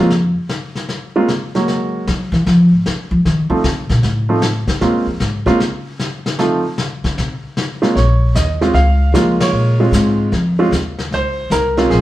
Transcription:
Already playing: F2
0.10 brush sweep, snare
0.49 snare
0.75 snare
0.89 brush sweep, snare
1.16 G#3 A#3 C4 C#4 F4
1.28 snare
1.55 F#3 G#3 A#3 C#4 F#4, snare
1.68 brush sweep, snare
2.08 F#3, snare
2.32 E3, snare
2.46 F3, brush sweep, snare
2.71 G#2
2.86 C#3, snare
3.11 F3
3.25 D#3, brush sweep, snare
3.50 C#3 F3 A3 C4 D#4 F4
3.64 C3, snare
3.89 A#2, snare
4.03 A2, brush sweep, snare
4.29 F3 A3 C4 D#4 F4
4.42 snare
4.67 C3, snare
4.81 C#3 G#3 A#3 C4 C#4 F4, brush sweep, snare
5.06 F2
5.20 G#2, snare
5.46 C3 G#3 A#3 C4 C#4 F4, snare
5.60 C#3, brush sweep, snare
5.99 snare
6.26 snare
6.38 F3 A3 C4 D#4 F4, brush sweep, snare
6.78 snare
7.04 C#3, snare
7.18 C3, brush sweep, snare
7.57 snare
7.82 G#3 A#3 C4 C#4 F4, snare
7.95 A#1 C#5, brush sweep, snare
8.35 D#2 D#5, snare, hi-hat pedal
8.61 G#3 C4 C#4 F4, snare
8.74 C#2 F5, brush sweep, snare
9.12 F2 G#3 A#3 C#4 F4, snare, hi-hat pedal
9.40 C#5, snare, ride
9.52 A#2, brush sweep
9.80 G#3 C4 C#4 F4
9.92 G#2, snare, hi-hat pedal
10.32 F2, brush sweep, snare
10.59 G#3 C4 C#4 F4
10.71 D#2, snare, hi-hat pedal
10.99 snare
11.11 C#2 C5, brush sweep, snare
11.50 C2 A#4, snare, hi-hat pedal
11.77 G#3 C4 C#4 F4, snare
11.90 A#1 G#4, brush sweep, snare

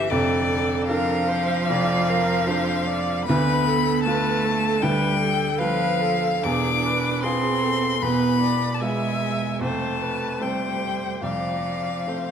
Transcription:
Already playing: G1 G2 E3 C#4 E4 G4 A4 E5
0.10 F1 F2 D3 A4 D5
0.87 F3 D4 F4 A4 A#4 F5
1.29 C5
1.69 F1 F2 D5
2.10 A#4
2.47 D4 F4 A4 C5
2.86 D5
3.26 D2 D3 B3 B4 B5
3.68 A4
4.04 A3 B3 F4 A4 B4 A5
4.45 A4
4.81 D2 D3 G3 B4 G5
5.21 A4
5.58 F3 B3 F4 A4 B4 F5
6.02 A4
6.44 E1 E2 D4 G#4 D6
6.86 B4
7.23 B3 C4 F4 G#4 C6
7.62 A4
8.01 E1 E2 B3 B4 B5
8.42 D5
8.74 A5
8.81 G#3 B3 F4 G#4 E5 G#5
9.61 F1 F2 A3 C5 A5
10.01 B4
10.40 G3 A3 C4 A4 C5 G5
11.22 F1 F2 F3 D5 F5
12.07 A3 C4 A4 C5

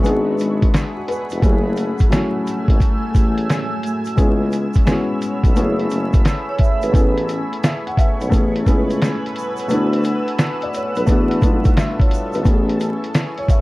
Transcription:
0.02 G#1 G#3 B3 D4, closed hi-hat, shaker
0.07 F#4 G#4
0.39 G#1, closed hi-hat, shaker
0.62 kick, closed hi-hat
0.74 snare, closed hi-hat, shaker
0.97 F#4
1.08 B4, closed hi-hat, shaker
1.30 F1 G#4, closed hi-hat, shaker
1.39 F#1 F#3 A3 C#4 G#5 E6, kick, closed hi-hat, shaker
1.44 E4 G4
1.52 G#4
1.76 closed hi-hat, shaker
1.98 kick, closed hi-hat, shaker
2.09 F#3 A3 C#4, snare, closed hi-hat, shaker
2.13 E4 F#4
2.47 closed hi-hat, shaker
2.68 G#1, kick, closed hi-hat
2.80 kick, closed hi-hat, shaker
3.15 A1, kick, closed hi-hat, shaker
3.38 closed hi-hat
3.50 snare, closed hi-hat, shaker
3.83 closed hi-hat, shaker
4.05 closed hi-hat, shaker
4.16 C#2 G#3 B3 C#4 C#5 E6, kick, closed hi-hat, shaker
4.20 E4 G#4
4.52 closed hi-hat, shaker
4.74 kick, closed hi-hat, shaker
4.85 G#3 B3 C#4, snare, closed hi-hat, shaker
4.89 E4 F#4
5.22 closed hi-hat, shaker
5.44 B1, kick, closed hi-hat, shaker
5.55 F#1 A3 B3 C#4 G#5 B5, closed hi-hat, shaker
5.59 E4 G#4
5.79 closed hi-hat
5.90 F#1, closed hi-hat, shaker
6.13 kick, closed hi-hat, shaker
6.25 snare, closed hi-hat, shaker
6.49 C#5
6.59 E5, kick, closed hi-hat
6.63 shaker
6.82 G#1 B4, closed hi-hat, shaker
6.92 A1 A3 B3 C#4 B4 G#5 C#6, kick, closed hi-hat, shaker
6.96 E4 G#4
7.18 closed hi-hat
7.29 closed hi-hat, shaker
7.53 closed hi-hat
7.64 E5, snare, closed hi-hat, shaker
7.87 F#5, closed hi-hat
7.97 E5, kick, closed hi-hat, shaker
8.21 B1 C#5, closed hi-hat, shaker
8.30 A1 A3 B3 C#4 F#5 G#5 E6, kick, shaker
8.34 E4 G#4, closed hi-hat
8.56 closed hi-hat
8.65 C#2 A3 B3 C#4, kick, closed hi-hat, shaker
8.69 E4 G#4
8.90 closed hi-hat, shaker
9.02 snare, closed hi-hat, shaker
9.26 closed hi-hat
9.36 closed hi-hat, shaker
9.57 closed hi-hat, shaker
9.68 D2 A3 B3 D4 F#5, closed hi-hat, shaker
9.72 E4 F#4
9.93 closed hi-hat
10.04 closed hi-hat, shaker
10.28 closed hi-hat
10.39 snare, closed hi-hat, shaker
10.62 D5, closed hi-hat
10.74 C#5, closed hi-hat, shaker
10.95 B1 B4, closed hi-hat, shaker
11.06 E2 A3 B3 D4 A4 E5 A5, kick, closed hi-hat, shaker
11.11 E4 F#4
11.31 closed hi-hat
11.41 B1 A3 B3 D4, kick, closed hi-hat, shaker
11.45 E4 F4
11.53 F#4
11.64 kick, closed hi-hat, shaker
11.77 E5, snare, closed hi-hat, shaker
12.00 C#5, kick, closed hi-hat
12.11 closed hi-hat, shaker
12.33 G#1 B4, closed hi-hat, shaker
12.43 A1 A3 B3 C#4 B4, kick, closed hi-hat, shaker
12.48 E4 G#4
12.69 closed hi-hat
12.80 closed hi-hat, shaker
13.04 closed hi-hat
13.14 snare, closed hi-hat, shaker
13.38 C#5, closed hi-hat
13.48 E5, kick, closed hi-hat, shaker

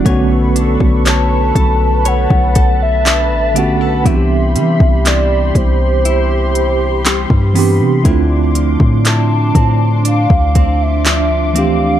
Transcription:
Already playing: D4 F#4
0.04 B1 D3 A3 B3 C#4 A4 B4 C#5 B5 C#6, kick, closed hi-hat
0.09 F#4
0.56 D4, closed hi-hat
0.80 B1, kick
1.06 C#5 A5, clap, closed hi-hat
1.55 B1 A4, kick, closed hi-hat
2.05 C#5 F#5 A5, closed hi-hat
2.30 B1, kick
2.55 A4, kick, closed hi-hat
2.83 E5
3.05 D4, clap, closed hi-hat
3.31 A1
3.54 D3 A3 B3 C#4 G4 F#5, closed hi-hat
3.59 F#4
3.68 B1
3.81 A4
4.04 C2 C3 E3 B3 C4 D4 E4 G4 E5 C6, kick, closed hi-hat
4.09 F#4
4.15 G4
4.56 E3 G3, closed hi-hat
4.80 C2, kick
5.05 E4 D5, clap, closed hi-hat
5.55 C2 C5, kick, closed hi-hat
6.05 E4, closed hi-hat
6.55 closed hi-hat
7.05 G3, clap, closed hi-hat
7.30 G2, kick
7.54 E3 B3 C4 D4, open hi-hat
7.59 G4
7.81 C3
8.04 D2 D3 A3 C4 D4 E4 D6, kick, closed hi-hat
8.09 F4
8.55 F3, closed hi-hat
8.80 A2, kick
9.05 E4 A5, clap, closed hi-hat
9.55 A2 C4, kick, closed hi-hat
10.05 D4 F5, closed hi-hat
10.30 D2, kick
10.55 C4, kick, closed hi-hat
10.83 E5
11.05 F3, clap, closed hi-hat
11.54 E3 A3 C4 D4, closed hi-hat
11.58 G4 F5

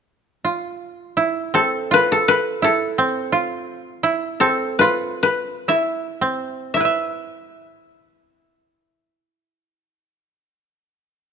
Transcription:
0.44 F4
1.17 E4
1.54 C4 A4
1.91 F4 B4
2.12 A4
2.28 B4
2.62 E4 A4
2.98 C4
3.32 F4
4.03 E4
4.40 C4 A4
4.79 F4 B4
5.23 B4
5.68 E4 E5
6.21 C4
6.74 E4 E5
6.80 B4
6.85 E5

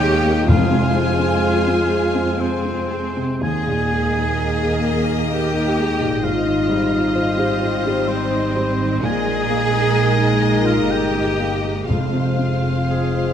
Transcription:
Already playing: D#2 A#2 A#3 D#4 G4 G#4 A#4 C#5 D#5 G5
0.00 G#3 A#3
0.24 A#3
0.47 F2 G#3 F4 C5 F5 G#5
0.71 C3
0.95 G#3
1.19 C4
1.43 G#4
1.67 C4
1.90 G#4
2.15 C4
2.39 C4 G#4 C5
2.64 C4
2.90 G#3
3.17 C3
3.41 D#2 A#3 D#4 G#4 D#5 G#5
3.67 A#2
3.92 G#3
4.15 D#4
4.39 A#4
4.63 G#4
4.85 A#4
5.09 G#4
5.31 G4 A#4 G5
5.54 D#4
5.78 G#3
6.01 A#2
6.23 G#1 G#2 G3 C4 F4 C5 F5
6.46 D#3
6.69 G3
6.92 D#4
7.15 C5
7.38 G4
7.61 C5
7.86 G4
8.08 C4 C5
8.32 D#4
8.56 G3
8.80 D#3
9.03 A#1 A#2 G#3 A#3 D#4 G#4 A#4 D#5 G#5
9.27 G#3
9.50 A#3
9.73 D#4
9.95 A#4
10.18 D#4
10.42 A#4
10.66 D#4 F4 F5
10.90 G1 G4 A#4 G5
11.15 D#4
11.39 A#3
11.64 G#3
11.88 F1 F2 G#3 C4 F4 C5 F5
12.14 C3
12.39 C4
12.64 F4
12.89 G#4
13.15 C5

